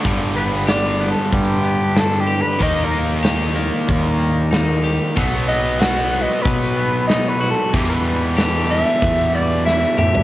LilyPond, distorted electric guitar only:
\new Staff \with { instrumentName = "Distorted electric guitar" } { \clef bass \time 4/4 \key g \major \tempo 4 = 94 <g, d g>1 | <ees bes ees'>1 | <b, fis b>1 | <e, b, e>1 | }